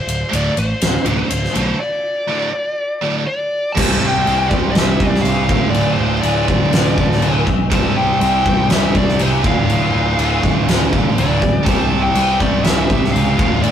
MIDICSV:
0, 0, Header, 1, 6, 480
1, 0, Start_track
1, 0, Tempo, 493016
1, 1747, Time_signature, 4, 2, 24, 8
1, 13352, End_track
2, 0, Start_track
2, 0, Title_t, "Lead electric guitar"
2, 0, Program_c, 0, 29
2, 0, Note_on_c, 0, 72, 103
2, 342, Note_on_c, 0, 74, 95
2, 346, Note_off_c, 0, 72, 0
2, 549, Note_off_c, 0, 74, 0
2, 565, Note_on_c, 0, 72, 97
2, 1129, Note_off_c, 0, 72, 0
2, 1141, Note_on_c, 0, 72, 93
2, 1590, Note_off_c, 0, 72, 0
2, 1621, Note_on_c, 0, 72, 83
2, 1747, Note_off_c, 0, 72, 0
2, 1750, Note_on_c, 0, 74, 90
2, 3148, Note_off_c, 0, 74, 0
2, 3187, Note_on_c, 0, 74, 86
2, 3626, Note_on_c, 0, 81, 103
2, 3680, Note_off_c, 0, 74, 0
2, 3971, Note_off_c, 0, 81, 0
2, 3975, Note_on_c, 0, 79, 104
2, 4338, Note_on_c, 0, 74, 92
2, 4370, Note_off_c, 0, 79, 0
2, 4408, Note_off_c, 0, 74, 0
2, 4586, Note_on_c, 0, 76, 100
2, 5049, Note_off_c, 0, 76, 0
2, 5078, Note_on_c, 0, 77, 92
2, 5535, Note_off_c, 0, 77, 0
2, 5547, Note_on_c, 0, 74, 97
2, 5772, Note_on_c, 0, 72, 82
2, 5786, Note_off_c, 0, 74, 0
2, 6033, Note_on_c, 0, 74, 84
2, 6044, Note_off_c, 0, 72, 0
2, 6271, Note_off_c, 0, 74, 0
2, 6283, Note_on_c, 0, 74, 84
2, 7213, Note_off_c, 0, 74, 0
2, 7545, Note_on_c, 0, 81, 112
2, 7756, Note_off_c, 0, 81, 0
2, 7760, Note_on_c, 0, 79, 101
2, 7982, Note_off_c, 0, 79, 0
2, 7994, Note_on_c, 0, 79, 105
2, 8435, Note_off_c, 0, 79, 0
2, 8499, Note_on_c, 0, 76, 98
2, 8725, Note_off_c, 0, 76, 0
2, 8729, Note_on_c, 0, 74, 87
2, 8940, Note_off_c, 0, 74, 0
2, 8971, Note_on_c, 0, 72, 92
2, 9032, Note_off_c, 0, 72, 0
2, 9219, Note_on_c, 0, 77, 92
2, 10845, Note_off_c, 0, 77, 0
2, 10891, Note_on_c, 0, 74, 92
2, 11326, Note_off_c, 0, 74, 0
2, 11339, Note_on_c, 0, 81, 108
2, 11678, Note_off_c, 0, 81, 0
2, 11709, Note_on_c, 0, 79, 101
2, 12070, Note_on_c, 0, 74, 81
2, 12079, Note_off_c, 0, 79, 0
2, 12303, Note_off_c, 0, 74, 0
2, 12307, Note_on_c, 0, 76, 88
2, 12766, Note_off_c, 0, 76, 0
2, 12770, Note_on_c, 0, 77, 91
2, 13262, Note_off_c, 0, 77, 0
2, 13266, Note_on_c, 0, 74, 100
2, 13352, Note_off_c, 0, 74, 0
2, 13352, End_track
3, 0, Start_track
3, 0, Title_t, "Overdriven electric guitar"
3, 0, Program_c, 1, 29
3, 3652, Note_on_c, 1, 48, 86
3, 3659, Note_on_c, 1, 55, 88
3, 3671, Note_on_c, 1, 60, 94
3, 3675, Note_on_c, 1, 64, 92
3, 3683, Note_on_c, 1, 67, 94
3, 3691, Note_on_c, 1, 72, 105
3, 4363, Note_off_c, 1, 48, 0
3, 4366, Note_off_c, 1, 55, 0
3, 4367, Note_off_c, 1, 72, 0
3, 4372, Note_off_c, 1, 60, 0
3, 4374, Note_off_c, 1, 64, 0
3, 4375, Note_off_c, 1, 67, 0
3, 4379, Note_on_c, 1, 72, 95
3, 4387, Note_on_c, 1, 67, 76
3, 4401, Note_on_c, 1, 60, 75
3, 4401, Note_on_c, 1, 64, 85
3, 4404, Note_on_c, 1, 55, 74
3, 4415, Note_on_c, 1, 48, 72
3, 5083, Note_off_c, 1, 48, 0
3, 5085, Note_off_c, 1, 72, 0
3, 5089, Note_off_c, 1, 55, 0
3, 5090, Note_off_c, 1, 67, 0
3, 5094, Note_on_c, 1, 48, 79
3, 5096, Note_off_c, 1, 64, 0
3, 5097, Note_off_c, 1, 60, 0
3, 5101, Note_on_c, 1, 55, 81
3, 5108, Note_on_c, 1, 60, 82
3, 5123, Note_on_c, 1, 64, 80
3, 5127, Note_on_c, 1, 67, 87
3, 5135, Note_on_c, 1, 72, 92
3, 5324, Note_off_c, 1, 48, 0
3, 5327, Note_off_c, 1, 55, 0
3, 5330, Note_off_c, 1, 60, 0
3, 5338, Note_off_c, 1, 64, 0
3, 5340, Note_off_c, 1, 67, 0
3, 5344, Note_off_c, 1, 72, 0
3, 5346, Note_on_c, 1, 38, 98
3, 5358, Note_on_c, 1, 45, 98
3, 5367, Note_on_c, 1, 50, 93
3, 5377, Note_on_c, 1, 57, 108
3, 5386, Note_on_c, 1, 65, 105
3, 6049, Note_off_c, 1, 38, 0
3, 6055, Note_off_c, 1, 45, 0
3, 6059, Note_off_c, 1, 50, 0
3, 6064, Note_off_c, 1, 57, 0
3, 6069, Note_off_c, 1, 65, 0
3, 6071, Note_on_c, 1, 38, 79
3, 6080, Note_on_c, 1, 45, 73
3, 6091, Note_on_c, 1, 50, 81
3, 6098, Note_on_c, 1, 57, 77
3, 6112, Note_on_c, 1, 65, 84
3, 6771, Note_off_c, 1, 38, 0
3, 6776, Note_off_c, 1, 45, 0
3, 6781, Note_off_c, 1, 50, 0
3, 6782, Note_off_c, 1, 65, 0
3, 6785, Note_off_c, 1, 57, 0
3, 6793, Note_on_c, 1, 65, 79
3, 6804, Note_on_c, 1, 57, 84
3, 6811, Note_on_c, 1, 50, 75
3, 6821, Note_on_c, 1, 45, 76
3, 6831, Note_on_c, 1, 38, 74
3, 7253, Note_off_c, 1, 65, 0
3, 7258, Note_off_c, 1, 57, 0
3, 7261, Note_off_c, 1, 50, 0
3, 7266, Note_off_c, 1, 45, 0
3, 7271, Note_off_c, 1, 38, 0
3, 7506, Note_on_c, 1, 48, 88
3, 7512, Note_on_c, 1, 55, 84
3, 7519, Note_on_c, 1, 60, 88
3, 7532, Note_on_c, 1, 64, 91
3, 7541, Note_on_c, 1, 67, 90
3, 7541, Note_on_c, 1, 72, 104
3, 8210, Note_off_c, 1, 48, 0
3, 8211, Note_off_c, 1, 72, 0
3, 8213, Note_off_c, 1, 55, 0
3, 8216, Note_off_c, 1, 60, 0
3, 8218, Note_off_c, 1, 67, 0
3, 8223, Note_off_c, 1, 64, 0
3, 8223, Note_on_c, 1, 72, 83
3, 8230, Note_on_c, 1, 67, 90
3, 8245, Note_on_c, 1, 60, 77
3, 8246, Note_on_c, 1, 64, 79
3, 8257, Note_on_c, 1, 55, 73
3, 8261, Note_on_c, 1, 48, 76
3, 8927, Note_off_c, 1, 48, 0
3, 8929, Note_off_c, 1, 72, 0
3, 8932, Note_off_c, 1, 67, 0
3, 8939, Note_on_c, 1, 48, 79
3, 8940, Note_off_c, 1, 55, 0
3, 8940, Note_off_c, 1, 60, 0
3, 8940, Note_off_c, 1, 64, 0
3, 8952, Note_on_c, 1, 55, 78
3, 8956, Note_on_c, 1, 60, 80
3, 8963, Note_on_c, 1, 64, 90
3, 8972, Note_on_c, 1, 67, 90
3, 8981, Note_on_c, 1, 72, 92
3, 9167, Note_off_c, 1, 48, 0
3, 9173, Note_off_c, 1, 55, 0
3, 9175, Note_off_c, 1, 60, 0
3, 9179, Note_off_c, 1, 64, 0
3, 9183, Note_off_c, 1, 67, 0
3, 9184, Note_on_c, 1, 38, 99
3, 9188, Note_off_c, 1, 72, 0
3, 9192, Note_on_c, 1, 45, 95
3, 9200, Note_on_c, 1, 50, 103
3, 9215, Note_on_c, 1, 57, 109
3, 9222, Note_on_c, 1, 65, 107
3, 9888, Note_off_c, 1, 38, 0
3, 9894, Note_off_c, 1, 45, 0
3, 9898, Note_off_c, 1, 50, 0
3, 9900, Note_on_c, 1, 38, 78
3, 9906, Note_off_c, 1, 57, 0
3, 9909, Note_off_c, 1, 65, 0
3, 9910, Note_on_c, 1, 45, 66
3, 9924, Note_on_c, 1, 50, 79
3, 9925, Note_on_c, 1, 57, 78
3, 9937, Note_on_c, 1, 65, 85
3, 10609, Note_off_c, 1, 38, 0
3, 10610, Note_off_c, 1, 65, 0
3, 10614, Note_off_c, 1, 45, 0
3, 10621, Note_off_c, 1, 50, 0
3, 10621, Note_on_c, 1, 65, 84
3, 10622, Note_off_c, 1, 57, 0
3, 10631, Note_on_c, 1, 57, 74
3, 10644, Note_on_c, 1, 50, 84
3, 10652, Note_on_c, 1, 45, 73
3, 10663, Note_on_c, 1, 38, 62
3, 11090, Note_off_c, 1, 65, 0
3, 11095, Note_off_c, 1, 57, 0
3, 11101, Note_off_c, 1, 50, 0
3, 11105, Note_off_c, 1, 45, 0
3, 11110, Note_off_c, 1, 38, 0
3, 11339, Note_on_c, 1, 48, 83
3, 11344, Note_on_c, 1, 55, 86
3, 11354, Note_on_c, 1, 60, 92
3, 11363, Note_on_c, 1, 64, 95
3, 11371, Note_on_c, 1, 67, 103
3, 11376, Note_on_c, 1, 72, 101
3, 12041, Note_off_c, 1, 72, 0
3, 12049, Note_off_c, 1, 48, 0
3, 12049, Note_off_c, 1, 67, 0
3, 12052, Note_off_c, 1, 55, 0
3, 12053, Note_on_c, 1, 72, 88
3, 12056, Note_off_c, 1, 60, 0
3, 12061, Note_off_c, 1, 64, 0
3, 12061, Note_on_c, 1, 67, 82
3, 12072, Note_on_c, 1, 64, 85
3, 12075, Note_on_c, 1, 60, 76
3, 12083, Note_on_c, 1, 55, 79
3, 12092, Note_on_c, 1, 48, 74
3, 12758, Note_off_c, 1, 48, 0
3, 12766, Note_off_c, 1, 72, 0
3, 12770, Note_off_c, 1, 67, 0
3, 12770, Note_on_c, 1, 48, 79
3, 12772, Note_off_c, 1, 55, 0
3, 12775, Note_off_c, 1, 64, 0
3, 12777, Note_off_c, 1, 60, 0
3, 12784, Note_on_c, 1, 55, 84
3, 12788, Note_on_c, 1, 60, 82
3, 12798, Note_on_c, 1, 64, 90
3, 12808, Note_on_c, 1, 67, 90
3, 12810, Note_on_c, 1, 72, 93
3, 13004, Note_off_c, 1, 48, 0
3, 13011, Note_off_c, 1, 55, 0
3, 13013, Note_off_c, 1, 60, 0
3, 13018, Note_off_c, 1, 64, 0
3, 13023, Note_off_c, 1, 67, 0
3, 13024, Note_off_c, 1, 72, 0
3, 13029, Note_on_c, 1, 38, 89
3, 13036, Note_on_c, 1, 45, 100
3, 13041, Note_on_c, 1, 50, 99
3, 13052, Note_on_c, 1, 57, 101
3, 13068, Note_on_c, 1, 65, 101
3, 13352, Note_off_c, 1, 38, 0
3, 13352, Note_off_c, 1, 45, 0
3, 13352, Note_off_c, 1, 50, 0
3, 13352, Note_off_c, 1, 57, 0
3, 13352, Note_off_c, 1, 65, 0
3, 13352, End_track
4, 0, Start_track
4, 0, Title_t, "Overdriven electric guitar"
4, 0, Program_c, 2, 29
4, 308, Note_on_c, 2, 38, 86
4, 308, Note_on_c, 2, 45, 98
4, 315, Note_on_c, 2, 50, 93
4, 499, Note_off_c, 2, 38, 0
4, 500, Note_off_c, 2, 45, 0
4, 503, Note_off_c, 2, 50, 0
4, 1013, Note_on_c, 2, 38, 89
4, 1018, Note_on_c, 2, 45, 95
4, 1028, Note_on_c, 2, 50, 102
4, 1212, Note_off_c, 2, 38, 0
4, 1214, Note_off_c, 2, 45, 0
4, 1219, Note_off_c, 2, 50, 0
4, 1492, Note_on_c, 2, 38, 80
4, 1496, Note_on_c, 2, 45, 95
4, 1497, Note_on_c, 2, 50, 104
4, 1691, Note_off_c, 2, 38, 0
4, 1693, Note_off_c, 2, 45, 0
4, 1693, Note_off_c, 2, 50, 0
4, 2212, Note_on_c, 2, 38, 89
4, 2222, Note_on_c, 2, 45, 88
4, 2228, Note_on_c, 2, 50, 93
4, 2411, Note_off_c, 2, 38, 0
4, 2416, Note_off_c, 2, 45, 0
4, 2419, Note_off_c, 2, 50, 0
4, 2942, Note_on_c, 2, 38, 84
4, 2953, Note_on_c, 2, 45, 85
4, 2955, Note_on_c, 2, 50, 96
4, 3135, Note_off_c, 2, 38, 0
4, 3141, Note_off_c, 2, 45, 0
4, 3142, Note_off_c, 2, 50, 0
4, 3658, Note_on_c, 2, 48, 88
4, 3673, Note_on_c, 2, 55, 96
4, 3682, Note_on_c, 2, 60, 104
4, 5324, Note_off_c, 2, 48, 0
4, 5332, Note_off_c, 2, 55, 0
4, 5336, Note_off_c, 2, 60, 0
4, 5342, Note_on_c, 2, 38, 87
4, 5351, Note_on_c, 2, 45, 98
4, 5368, Note_on_c, 2, 50, 93
4, 7006, Note_off_c, 2, 38, 0
4, 7011, Note_off_c, 2, 45, 0
4, 7019, Note_off_c, 2, 50, 0
4, 7020, Note_on_c, 2, 38, 82
4, 7036, Note_on_c, 2, 45, 92
4, 7052, Note_on_c, 2, 50, 88
4, 7246, Note_off_c, 2, 38, 0
4, 7254, Note_off_c, 2, 45, 0
4, 7262, Note_off_c, 2, 50, 0
4, 7518, Note_on_c, 2, 48, 94
4, 7532, Note_on_c, 2, 55, 96
4, 7546, Note_on_c, 2, 60, 96
4, 9176, Note_off_c, 2, 48, 0
4, 9180, Note_on_c, 2, 38, 91
4, 9184, Note_off_c, 2, 55, 0
4, 9191, Note_off_c, 2, 60, 0
4, 9195, Note_on_c, 2, 45, 104
4, 9205, Note_on_c, 2, 50, 115
4, 10845, Note_off_c, 2, 38, 0
4, 10857, Note_on_c, 2, 38, 73
4, 10858, Note_off_c, 2, 45, 0
4, 10863, Note_off_c, 2, 50, 0
4, 10877, Note_on_c, 2, 45, 90
4, 10887, Note_on_c, 2, 50, 93
4, 11087, Note_off_c, 2, 38, 0
4, 11097, Note_off_c, 2, 45, 0
4, 11102, Note_off_c, 2, 50, 0
4, 11342, Note_on_c, 2, 48, 83
4, 11352, Note_on_c, 2, 55, 84
4, 11369, Note_on_c, 2, 60, 98
4, 13010, Note_off_c, 2, 48, 0
4, 13015, Note_off_c, 2, 55, 0
4, 13016, Note_on_c, 2, 38, 83
4, 13024, Note_off_c, 2, 60, 0
4, 13028, Note_on_c, 2, 45, 94
4, 13039, Note_on_c, 2, 50, 92
4, 13352, Note_off_c, 2, 38, 0
4, 13352, Note_off_c, 2, 45, 0
4, 13352, Note_off_c, 2, 50, 0
4, 13352, End_track
5, 0, Start_track
5, 0, Title_t, "Picked electric bass"
5, 0, Program_c, 3, 34
5, 71, Note_on_c, 3, 26, 75
5, 219, Note_off_c, 3, 26, 0
5, 322, Note_on_c, 3, 26, 86
5, 467, Note_off_c, 3, 26, 0
5, 559, Note_on_c, 3, 33, 80
5, 704, Note_off_c, 3, 33, 0
5, 799, Note_on_c, 3, 26, 87
5, 944, Note_off_c, 3, 26, 0
5, 1029, Note_on_c, 3, 26, 87
5, 1177, Note_off_c, 3, 26, 0
5, 1282, Note_on_c, 3, 26, 83
5, 1427, Note_off_c, 3, 26, 0
5, 1517, Note_on_c, 3, 35, 83
5, 1663, Note_off_c, 3, 35, 0
5, 3678, Note_on_c, 3, 36, 94
5, 3880, Note_off_c, 3, 36, 0
5, 3909, Note_on_c, 3, 36, 89
5, 4114, Note_off_c, 3, 36, 0
5, 4148, Note_on_c, 3, 36, 93
5, 4354, Note_off_c, 3, 36, 0
5, 4392, Note_on_c, 3, 36, 86
5, 4596, Note_off_c, 3, 36, 0
5, 4627, Note_on_c, 3, 36, 97
5, 4833, Note_off_c, 3, 36, 0
5, 4876, Note_on_c, 3, 36, 87
5, 5078, Note_off_c, 3, 36, 0
5, 5103, Note_on_c, 3, 36, 92
5, 5310, Note_off_c, 3, 36, 0
5, 5351, Note_on_c, 3, 26, 93
5, 5555, Note_off_c, 3, 26, 0
5, 5583, Note_on_c, 3, 26, 98
5, 5790, Note_off_c, 3, 26, 0
5, 5824, Note_on_c, 3, 26, 83
5, 6030, Note_off_c, 3, 26, 0
5, 6070, Note_on_c, 3, 26, 89
5, 6274, Note_off_c, 3, 26, 0
5, 6317, Note_on_c, 3, 26, 81
5, 6518, Note_off_c, 3, 26, 0
5, 6556, Note_on_c, 3, 26, 97
5, 6757, Note_off_c, 3, 26, 0
5, 6802, Note_on_c, 3, 26, 99
5, 7001, Note_off_c, 3, 26, 0
5, 7034, Note_on_c, 3, 26, 92
5, 7236, Note_off_c, 3, 26, 0
5, 7275, Note_on_c, 3, 35, 88
5, 7477, Note_off_c, 3, 35, 0
5, 7521, Note_on_c, 3, 36, 103
5, 7720, Note_off_c, 3, 36, 0
5, 7753, Note_on_c, 3, 36, 80
5, 7956, Note_off_c, 3, 36, 0
5, 7989, Note_on_c, 3, 36, 90
5, 8194, Note_off_c, 3, 36, 0
5, 8239, Note_on_c, 3, 36, 83
5, 8440, Note_off_c, 3, 36, 0
5, 8468, Note_on_c, 3, 36, 99
5, 8674, Note_off_c, 3, 36, 0
5, 8716, Note_on_c, 3, 36, 92
5, 8918, Note_off_c, 3, 36, 0
5, 8956, Note_on_c, 3, 36, 94
5, 9158, Note_off_c, 3, 36, 0
5, 9195, Note_on_c, 3, 26, 87
5, 9398, Note_off_c, 3, 26, 0
5, 9428, Note_on_c, 3, 26, 97
5, 9634, Note_off_c, 3, 26, 0
5, 9668, Note_on_c, 3, 26, 87
5, 9875, Note_off_c, 3, 26, 0
5, 9908, Note_on_c, 3, 26, 84
5, 10115, Note_off_c, 3, 26, 0
5, 10161, Note_on_c, 3, 26, 80
5, 10362, Note_off_c, 3, 26, 0
5, 10387, Note_on_c, 3, 26, 96
5, 10595, Note_off_c, 3, 26, 0
5, 10643, Note_on_c, 3, 26, 90
5, 10843, Note_off_c, 3, 26, 0
5, 10882, Note_on_c, 3, 26, 97
5, 11083, Note_off_c, 3, 26, 0
5, 11125, Note_on_c, 3, 26, 84
5, 11325, Note_off_c, 3, 26, 0
5, 11358, Note_on_c, 3, 36, 97
5, 11561, Note_off_c, 3, 36, 0
5, 11595, Note_on_c, 3, 36, 84
5, 11800, Note_off_c, 3, 36, 0
5, 11836, Note_on_c, 3, 36, 91
5, 12040, Note_off_c, 3, 36, 0
5, 12083, Note_on_c, 3, 36, 90
5, 12284, Note_off_c, 3, 36, 0
5, 12305, Note_on_c, 3, 36, 92
5, 12514, Note_off_c, 3, 36, 0
5, 12561, Note_on_c, 3, 36, 91
5, 12763, Note_off_c, 3, 36, 0
5, 12797, Note_on_c, 3, 37, 92
5, 13039, Note_on_c, 3, 26, 93
5, 13053, Note_off_c, 3, 37, 0
5, 13241, Note_off_c, 3, 26, 0
5, 13270, Note_on_c, 3, 26, 94
5, 13352, Note_off_c, 3, 26, 0
5, 13352, End_track
6, 0, Start_track
6, 0, Title_t, "Drums"
6, 83, Note_on_c, 9, 51, 68
6, 181, Note_off_c, 9, 51, 0
6, 324, Note_on_c, 9, 51, 81
6, 421, Note_off_c, 9, 51, 0
6, 556, Note_on_c, 9, 51, 59
6, 653, Note_off_c, 9, 51, 0
6, 794, Note_on_c, 9, 51, 85
6, 805, Note_on_c, 9, 38, 103
6, 891, Note_off_c, 9, 51, 0
6, 902, Note_off_c, 9, 38, 0
6, 1029, Note_on_c, 9, 51, 60
6, 1127, Note_off_c, 9, 51, 0
6, 1271, Note_on_c, 9, 51, 84
6, 1368, Note_off_c, 9, 51, 0
6, 1405, Note_on_c, 9, 38, 31
6, 1502, Note_off_c, 9, 38, 0
6, 1513, Note_on_c, 9, 51, 57
6, 1611, Note_off_c, 9, 51, 0
6, 3673, Note_on_c, 9, 36, 118
6, 3676, Note_on_c, 9, 49, 127
6, 3676, Note_on_c, 9, 57, 66
6, 3770, Note_off_c, 9, 36, 0
6, 3773, Note_off_c, 9, 49, 0
6, 3773, Note_off_c, 9, 57, 0
6, 4157, Note_on_c, 9, 57, 56
6, 4254, Note_off_c, 9, 57, 0
6, 4390, Note_on_c, 9, 36, 80
6, 4488, Note_off_c, 9, 36, 0
6, 4627, Note_on_c, 9, 57, 59
6, 4637, Note_on_c, 9, 38, 110
6, 4724, Note_off_c, 9, 57, 0
6, 4735, Note_off_c, 9, 38, 0
6, 4870, Note_on_c, 9, 36, 89
6, 4968, Note_off_c, 9, 36, 0
6, 5012, Note_on_c, 9, 38, 36
6, 5110, Note_off_c, 9, 38, 0
6, 5112, Note_on_c, 9, 57, 61
6, 5209, Note_off_c, 9, 57, 0
6, 5347, Note_on_c, 9, 36, 106
6, 5445, Note_off_c, 9, 36, 0
6, 5593, Note_on_c, 9, 57, 60
6, 5690, Note_off_c, 9, 57, 0
6, 6069, Note_on_c, 9, 57, 64
6, 6166, Note_off_c, 9, 57, 0
6, 6312, Note_on_c, 9, 36, 81
6, 6409, Note_off_c, 9, 36, 0
6, 6550, Note_on_c, 9, 57, 63
6, 6561, Note_on_c, 9, 38, 111
6, 6647, Note_off_c, 9, 57, 0
6, 6658, Note_off_c, 9, 38, 0
6, 6793, Note_on_c, 9, 36, 82
6, 6891, Note_off_c, 9, 36, 0
6, 6929, Note_on_c, 9, 38, 35
6, 7027, Note_off_c, 9, 38, 0
6, 7030, Note_on_c, 9, 57, 68
6, 7128, Note_off_c, 9, 57, 0
6, 7272, Note_on_c, 9, 36, 73
6, 7369, Note_off_c, 9, 36, 0
6, 7512, Note_on_c, 9, 36, 111
6, 7512, Note_on_c, 9, 57, 67
6, 7609, Note_off_c, 9, 57, 0
6, 7610, Note_off_c, 9, 36, 0
6, 7996, Note_on_c, 9, 57, 63
6, 8093, Note_off_c, 9, 57, 0
6, 8235, Note_on_c, 9, 36, 82
6, 8332, Note_off_c, 9, 36, 0
6, 8468, Note_on_c, 9, 57, 65
6, 8479, Note_on_c, 9, 38, 109
6, 8566, Note_off_c, 9, 57, 0
6, 8576, Note_off_c, 9, 38, 0
6, 8713, Note_on_c, 9, 36, 88
6, 8811, Note_off_c, 9, 36, 0
6, 8848, Note_on_c, 9, 38, 33
6, 8945, Note_off_c, 9, 38, 0
6, 8950, Note_on_c, 9, 57, 62
6, 9047, Note_off_c, 9, 57, 0
6, 9194, Note_on_c, 9, 36, 103
6, 9291, Note_off_c, 9, 36, 0
6, 9440, Note_on_c, 9, 57, 61
6, 9537, Note_off_c, 9, 57, 0
6, 9919, Note_on_c, 9, 57, 60
6, 10016, Note_off_c, 9, 57, 0
6, 10159, Note_on_c, 9, 36, 79
6, 10256, Note_off_c, 9, 36, 0
6, 10402, Note_on_c, 9, 57, 65
6, 10413, Note_on_c, 9, 38, 113
6, 10500, Note_off_c, 9, 57, 0
6, 10510, Note_off_c, 9, 38, 0
6, 10639, Note_on_c, 9, 36, 89
6, 10737, Note_off_c, 9, 36, 0
6, 10885, Note_on_c, 9, 57, 69
6, 10983, Note_off_c, 9, 57, 0
6, 11119, Note_on_c, 9, 36, 79
6, 11216, Note_off_c, 9, 36, 0
6, 11355, Note_on_c, 9, 57, 64
6, 11356, Note_on_c, 9, 36, 115
6, 11452, Note_off_c, 9, 57, 0
6, 11454, Note_off_c, 9, 36, 0
6, 11833, Note_on_c, 9, 57, 66
6, 11930, Note_off_c, 9, 57, 0
6, 12077, Note_on_c, 9, 36, 83
6, 12174, Note_off_c, 9, 36, 0
6, 12311, Note_on_c, 9, 57, 59
6, 12322, Note_on_c, 9, 38, 115
6, 12408, Note_off_c, 9, 57, 0
6, 12419, Note_off_c, 9, 38, 0
6, 12559, Note_on_c, 9, 36, 88
6, 12656, Note_off_c, 9, 36, 0
6, 12699, Note_on_c, 9, 38, 34
6, 12797, Note_off_c, 9, 38, 0
6, 12810, Note_on_c, 9, 57, 64
6, 12907, Note_off_c, 9, 57, 0
6, 13039, Note_on_c, 9, 36, 108
6, 13136, Note_off_c, 9, 36, 0
6, 13275, Note_on_c, 9, 57, 60
6, 13352, Note_off_c, 9, 57, 0
6, 13352, End_track
0, 0, End_of_file